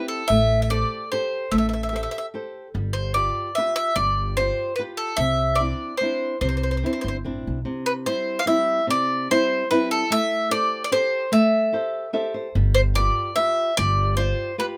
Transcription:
Already playing: C4 E4 G4
0.08 A4
0.28 A1 A3 E5
0.62 E5
0.70 G4 A4 C5 D5
1.12 G4 A4 C5
1.51 A1 A3 E5
1.58 E5
1.69 E5
1.73 E5
1.83 E5
1.89 G4 A4 E5
1.93 C5 E5
2.03 E5
2.11 E5
2.18 E5
2.34 G4 A4 C5
2.74 G1 G3
2.93 C5
3.14 F4 G4 B4 D5
3.55 F4 G4 B4 E5
3.76 E5
3.96 G1 G3 D5
4.37 F4 G4 C5 D5
4.76 F4 G4 B4
4.97 A4
5.17 C2 C3 E5
5.55 C4 D5
5.60 D4 E4
5.97 C4 C5
6.02 D4 E4
6.41 C2 C3 C5
6.49 C5
6.57 C5
6.63 C5
6.71 C5
6.77 C5
6.83 C4 D4 E4 C5
6.93 C5
7.01 G1 C5
7.08 C5
7.24 A1 C4 D4 E4
7.47 B1
7.65 C3
7.86 B4
8.06 G3 C4 E4 C5
8.39 F5
8.46 G3 C4 E4 E5
8.87 C3 D5
9.30 G3 C4 E4 C5
9.70 G3 C4 E4 B4
9.91 A4
10.10 A3 E5
10.51 G4 A4 C5 D5
10.84 D5
10.91 G4 A4 C5
11.32 A3 E5
11.73 G4 A4 C5
12.13 G4 A4 C5 E5
12.34 C5
12.55 G1 G3
12.75 C5
12.95 F4 G4 B4 D5
13.36 F4 G4 B4 E5
13.77 G1 G3 D5
14.17 F4 G4 C5 D5
14.58 F4 G4 B4

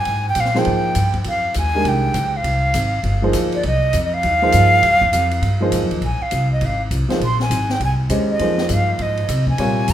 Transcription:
0.00 G#5
0.05 G#2, ride
0.29 G5
0.35 A#2, hi-hat pedal, ride
0.40 F5
0.45 snare
0.55 F3 A#3 D#4 G#4 C5, snare
0.59 G5
0.65 G#2, ride
0.95 G2, hi-hat pedal, ride
1.14 kick, ride
1.24 F2, ride
1.28 F5
1.54 D#2 G#5, hi-hat pedal, ride
1.74 D#3 G#3 D4 G4 A#4
1.84 C2, ride
1.88 G5
2.14 C#2, hi-hat pedal, ride
2.37 F5
2.44 C2, ride
2.74 G#1, hi-hat pedal, ride
3.03 G1, ride
3.22 F3 A#3 D#4 G#4 C5
3.33 D2, hi-hat pedal, ride
3.52 D5, ride
3.63 C2 D#5, ride
3.93 F2, hi-hat pedal, ride
4.04 D#5
4.14 F5
4.23 D#2, ride
4.42 F3 A#3 D#4 G#4 C5
4.52 G2, hi-hat pedal, ride
4.83 G#2, ride
4.93 F2
5.01 D#2, kick
5.13 F2, hi-hat pedal, ride
5.31 ride
5.42 G2, ride
5.60 F3 A#3 D#4 G#4 C5
5.72 G#2, hi-hat pedal, ride
5.82 F2
5.91 D#2, ride
6.01 A#1 G#5, ride
6.21 F5, muted upright bass stroke
6.31 C2, hi-hat pedal, ride
6.52 D#5
6.61 G#1, ride
6.65 F5
6.91 C2, hi-hat pedal, ride
7.09 F3 A#3 D#4 G#4 C5, snare, ride
7.20 A#1, ride
7.25 C6
7.40 G#5, snare
7.50 G#1, hi-hat pedal, ride
7.69 G5, snare
7.80 C2, ride
7.85 G#5
8.09 D#2 G#3 C#4 G4 C5 D#5, hi-hat pedal, ride
8.31 D#5
8.39 F2 F3 A#3 D#4 G#4 C5, ride
8.58 snare
8.69 G2, hi-hat pedal, ride
8.73 F5
8.99 G#2 D#5, ride
9.17 ride
9.29 C3, hi-hat pedal, ride
9.47 G#5, kick
9.58 A#2 C3 G3 F4 A#4 C#5, ride
9.88 F2, hi-hat pedal, ride

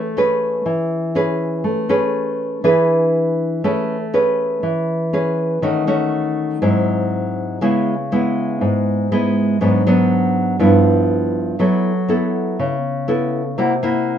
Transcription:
Already playing: A3
0.17 C#4 G#4 B4
0.66 E3
1.15 C#4 G#4 B4
1.64 A3
1.89 C#4 G#4 B4
2.64 E3 D4 G#4 B4
3.64 A3 C#4 G#4 B4
4.14 C#4 G#4 B4
4.63 E3
5.13 C#4 G#4 B4
5.62 D#3 A3 C#4 F#4
5.87 A3 C#4 F#4
6.62 G#2 F#3 C4 E4
7.61 C#3 G#3 B3 E4
8.12 G#3 B3 E4
8.61 G#2
9.12 G#3 B3 E4
9.61 G#2 F#3 B3 D4
9.87 F#3 B3 D4
10.59 G2 F3 B3 E4
11.59 F#3 B3 E4 A4
12.09 B3 E4 A4
12.59 C#3
13.08 B3 E4 A4
13.58 C3 A#3 E4 F#4
13.83 A#3 E4 F#4

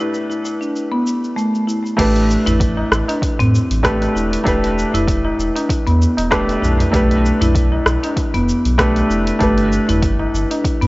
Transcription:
Already playing: A3 D4 G4 B4
0.00 E4, shaker
0.14 shaker
0.30 E4, shaker
0.45 shaker
0.61 D4, shaker
0.76 shaker
0.92 B3
1.07 shaker
1.24 shaker
1.36 A3, shaker
1.55 shaker
1.67 E4, shaker
1.86 shaker
1.97 A1 A3 D4 G4 B4, kick, open hi-hat, crash, shaker
2.16 open hi-hat, tabla tin
2.30 shaker
2.46 A1 E4, open hi-hat, tabla ge, shaker
2.60 kick, open hi-hat, shaker
2.77 E4, tabla na
2.91 A1, cross-stick, shaker
3.08 D4, open hi-hat, tabla na, tabla tin, shaker
3.22 kick, open hi-hat, shaker
3.39 A2 C4, open hi-hat, tabla ge
3.55 shaker
3.71 A1, open hi-hat, shaker
3.83 A3 D4 G4 B4, kick, cross-stick, open hi-hat, shaker
4.01 open hi-hat, tabla na, shaker
4.15 E1 E4, shaker
4.33 open hi-hat, shaker
4.44 E1 A3 D4 G4, kick, open hi-hat, shaker
4.48 B4
4.63 open hi-hat, tabla tin
4.78 shaker
4.94 E1 E4, open hi-hat, tabla ge, shaker
5.08 kick, open hi-hat, shaker
5.25 E4, tabla na
5.39 E1, shaker
5.56 D4, open hi-hat, tabla na, tabla tin, shaker
5.70 kick, open hi-hat, shaker
5.87 E2 B3, open hi-hat
6.02 shaker
6.17 E1, open hi-hat, tabla na, shaker
6.31 A3 D4 G4 B4, kick, cross-stick, open hi-hat, shaker
6.49 open hi-hat, tabla na, shaker
6.62 B1 E4, tabla ge, shaker
6.79 open hi-hat, tabla na, tabla tin, tabla ge, shaker
6.91 B1 A3 D4 G4 B4, kick, open hi-hat, shaker
7.10 open hi-hat, tabla tin
7.25 shaker
7.41 B1 E4, open hi-hat, tabla ge, shaker
7.55 kick, open hi-hat, shaker
7.72 E4, tabla na
7.86 B1, cross-stick, shaker
8.03 D4, open hi-hat, tabla na, tabla tin, shaker
8.17 kick, open hi-hat, shaker
8.34 F1 B3, open hi-hat, tabla ge
8.49 shaker
8.65 B1, open hi-hat, shaker
8.78 A3 D4 G4 B4, kick, cross-stick, open hi-hat, shaker
8.96 open hi-hat, tabla na, shaker
9.10 F1 E4, shaker
9.27 open hi-hat, shaker
9.39 G1 A3 D4 G4 B4, kick, open hi-hat, shaker
9.58 open hi-hat, tabla tin
9.72 shaker
9.89 G1 E4, open hi-hat, tabla ge, shaker
10.02 kick, open hi-hat, shaker
10.19 E4, tabla na
10.34 G1, shaker
10.51 D4, open hi-hat, tabla na, tabla tin, shaker
10.64 kick, open hi-hat, shaker
10.81 G2 B3, open hi-hat

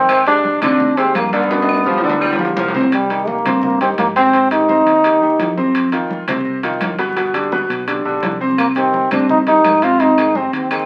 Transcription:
Already playing: G#1 D#3 C4 D#4 D#5
0.09 C3, high conga, high timbale, claves
0.27 G#3 D4 G4 G#4, high conga, high timbale
0.44 high conga, low timbale
0.62 D#2 C3 D3 C4 D4 D5, high conga, low conga, high timbale, claves
0.80 high conga, low conga
0.97 C3 G#3 C4 G4 G#4, high conga, high timbale
1.15 G2 A#3, high conga, high timbale, low timbale, claves
1.33 D3 D#3 B3 D4 D5, high conga, high timbale
1.51 B2 D4 D5, high conga, high timbale
1.62 high timbale
1.69 high conga, claves
1.74 high timbale
1.86 F3 F4 G4, high conga
1.98 low timbale
2.03 D2 D3 D4 D5, high conga
2.10 low timbale
2.21 G3, high conga, low timbale, claves
2.33 low timbale
2.39 D2 F3 F4 G4, high conga
2.45 low timbale
2.57 C2 F3, high conga, low timbale
2.68 low timbale
2.74 C3 C4 C5, low conga
2.81 low timbale
2.92 G3, high conga, high timbale
3.10 D#3 D#4 G4, high conga, high timbale
3.27 A#3, high conga, low timbale
3.45 G2 C3 C4 C5, high conga, low conga, high timbale
3.63 A#3, high conga, low conga
3.81 D#3 C4 D#4 G4, high conga, high timbale
3.98 G#2 A#3, high conga, high timbale, low timbale
4.16 C3 C4 C5, high conga, high timbale
4.33 C3 C4 C5, high conga, high timbale
4.51 D#3 D#4 G4, high conga, high timbale
4.68 C3 C4 C5, high conga, low timbale
4.86 D#2, high conga, high timbale
5.04 D#3 D#4 G4, high conga, high timbale
5.21 D#2 D#3 D#4 G4, high conga
5.39 F2, high conga, high timbale, low timbale
5.57 C3 C4 C5, high conga
5.75 high timbale
5.92 D#3 D#4 F4, high conga, high timbale
6.10 high conga, low timbale
6.28 C2 C3 C4 C5, high conga, low conga, high timbale
6.46 high conga
6.63 D#3 D#4 F4, high conga, high timbale
6.81 G1, high conga, high timbale, low timbale
6.98 B2 B3 B4, high conga, high timbale
7.16 B2 B3 B4, high conga, high timbale
7.34 D3 D4 G4, high conga, high timbale
7.52 B2 B3 B4, high conga, low timbale
7.69 B1, high conga, high timbale
7.87 D3 D4 G4, high conga, high timbale
8.05 B1 D3 D4 G4, high conga
8.22 C2, high conga, high timbale, low timbale
8.40 C3 C4 C5
8.58 A#3, high conga, high timbale, claves
8.76 D#3 C4 D#4 G4, high conga, high timbale
8.93 high conga, low timbale
9.11 G2 C3 C4 D4 C5, high conga, low conga, high timbale, claves
9.29 D#4, high conga, low conga
9.47 D#3 D#4 G4, high conga, high timbale
9.64 G#2, high conga, high timbale, low timbale, claves
9.82 C3 C4 F4 C5, high timbale
10.00 C3 C4 D#4 C5, high conga, high timbale
10.18 D#3 D#4 G#4, high conga, high timbale, claves
10.35 C3 C4 C5, high conga, low timbale
10.53 D#2 C4, high conga, high timbale
10.71 D#3 D#4 G#4, high conga, high timbale, claves

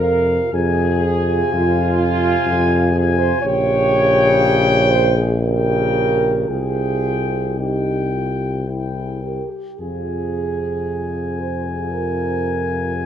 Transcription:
Already playing: F2 A#4
0.00 C3 F4 F5
0.52 F2 C3 F4 G#4 G#5
1.04 C3 F4 G#5
1.53 F2 F4
2.00 C3 F4 G#5
2.46 F2
2.92 C3 F4 G#4
2.96 G#5
3.17 C5
3.42 A#1 C#3 G4 C#5 G5
4.91 C5
5.17 G#4
5.42 C#3 G4 A#4 G5
6.48 C2 C3 F4 G#4 G5
7.57 C3 D#4 G4 G5
8.14 F4
8.66 C3 E4 G5
8.94 G#4
9.22 G4 A#4
9.50 G4
9.79 F2 C3 F4 G#4 G#5
11.40 C5
11.66 G#4
11.90 A#4
12.95 G#4

